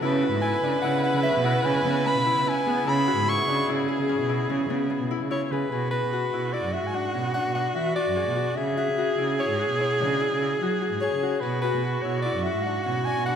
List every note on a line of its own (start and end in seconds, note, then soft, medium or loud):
0.00 5.67 C#3 medium
0.00 0.28 C#3 loud
0.00 1.85 B3 medium
0.00 5.67 B3 medium
0.00 0.69 C#4 medium
0.00 5.67 E4 medium
0.00 0.42 E4 medium
0.00 0.22 F#4 medium
0.00 1.10 A4 medium
0.00 2.88 B4 loud
0.22 2.66 F#4 medium
0.32 0.59 G#2 medium
0.41 0.83 E4 medium
0.41 0.80 G#5 medium
0.63 0.80 C#3 medium
0.63 1.31 D4 medium
0.82 1.01 C#3 medium
0.82 1.44 E4 medium
0.82 1.01 F#5 medium
1.03 2.67 G#4 medium
1.03 1.22 F#5 medium
1.14 1.23 C#3 medium
1.23 1.65 C#4 medium
1.23 1.45 E5 medium
1.34 1.61 B2 loud
1.44 2.26 E4 medium
1.44 1.67 F#5 medium
1.64 1.73 C#3 loud
1.64 3.54 C#4 medium
1.64 2.08 G#5 medium
1.85 2.03 C#3 medium
1.85 2.05 B3 medium
2.06 4.70 B3 medium
2.06 2.50 B5 loud
2.15 2.24 B2 medium
2.26 2.46 E4 medium
2.36 2.54 C#3 medium
2.46 2.86 E4 medium
2.46 2.90 G#5 medium
2.66 2.84 B3 medium
2.66 3.88 G#4 medium
2.87 3.14 C#3 loud
2.87 3.27 E4 medium
2.87 5.51 G#4 medium
2.87 3.31 B5 loud
3.07 5.51 F#4 medium
3.17 3.44 G#2 medium
3.28 3.68 E4 medium
3.28 3.69 C#6 loud
3.48 3.66 C#3 medium
3.48 4.15 D4 medium
3.68 3.86 C#3 loud
3.68 4.29 E4 medium
3.89 5.52 G#4 medium
3.99 4.08 C#3 medium
4.09 4.49 C#4 medium
4.19 4.45 B2 loud
4.29 5.10 E4 medium
4.49 4.58 C#3 loud
4.49 7.00 C#4 medium
4.69 4.87 C#3 medium
4.69 4.90 B3 medium
4.90 8.00 B3 medium
5.00 5.09 B2 medium
5.11 5.30 E4 medium
5.20 5.38 C#3 medium
5.31 6.33 E4 medium
5.31 5.44 C#5 medium
5.44 5.53 C#5 medium
5.51 5.69 C#3 medium
5.51 5.72 G#4 medium
5.51 5.90 B4 medium
5.71 5.90 B2 medium
5.71 8.59 F#4 medium
5.71 7.99 G#4 medium
5.91 6.12 F#4 medium
5.91 6.54 B4 medium
6.02 6.29 B2 medium
6.13 6.73 F#4 medium
6.33 6.60 B2 medium
6.33 6.53 E4 medium
6.53 9.14 E4 medium
6.53 6.74 D5 medium
6.63 6.81 F#2 medium
6.73 7.75 F#4 medium
6.73 6.88 E5 medium
6.84 7.02 G#2 medium
6.84 6.96 G#5 medium
6.94 7.20 D4 medium
6.94 7.34 F#5 loud
7.14 7.41 B2 medium
7.14 7.41 C#4 medium
7.34 7.54 D4 medium
7.34 7.54 F#5 medium
7.45 7.71 B2 medium
7.55 10.00 D4 medium
7.55 7.70 F#5 medium
7.70 7.77 F#5 medium
7.75 8.02 E3 medium
7.75 7.95 F#4 medium
7.75 7.95 E5 medium
7.96 8.36 F#4 medium
7.96 8.58 D5 medium
8.07 8.16 F#2 medium
8.16 8.57 G#4 medium
8.27 8.53 B2 medium
8.36 8.77 F#4 medium
8.56 8.75 C#3 medium
8.56 10.84 G#4 medium
8.56 11.43 G#4 loud
8.56 8.77 E5 medium
8.77 8.98 F#4 medium
8.77 9.16 E5 medium
8.87 9.14 C#3 medium
8.98 9.59 F#4 medium
9.18 9.45 C#3 medium
9.18 9.38 E4 medium
9.39 9.79 E4 medium
9.39 9.77 C#5 medium
9.49 9.67 G#2 medium
9.59 10.62 F#4 medium
9.69 9.87 B2 medium
9.80 10.20 E4 medium
9.80 10.18 C#5 medium
10.00 10.27 C#3 medium
10.00 12.65 D4 medium
10.20 10.40 E4 medium
10.31 10.57 C#3 medium
10.41 12.04 E4 medium
10.61 10.88 F#3 medium
10.61 10.81 F#4 medium
10.82 11.22 F#4 medium
10.92 11.01 G#2 medium
11.01 11.42 G#4 medium
11.01 11.42 C#5 medium
11.12 11.38 C#3 medium
11.23 11.63 F#4 medium
11.40 11.60 B2 medium
11.40 13.36 F#4 medium
11.40 13.36 G#4 medium
11.40 11.61 B4 medium
11.62 11.84 F#4 medium
11.62 12.04 B4 medium
11.73 12.00 B2 medium
11.84 12.45 F#4 medium
12.02 12.31 B2 medium
12.02 12.25 E4 medium
12.02 12.21 C#5 medium
12.22 13.36 E4 medium
12.22 12.45 D5 medium
12.35 12.52 F#2 medium
12.43 13.36 F#4 medium
12.43 12.65 E5 medium
12.55 12.72 G#2 medium
12.63 12.92 D4 medium
12.63 12.83 F#5 medium
12.83 13.12 B2 medium
12.83 13.13 C#4 medium
12.83 13.07 F#5 medium
13.05 13.27 D4 medium
13.05 13.25 G#5 loud
13.17 13.36 B2 medium
13.26 13.36 D4 medium
13.26 13.36 F#5 medium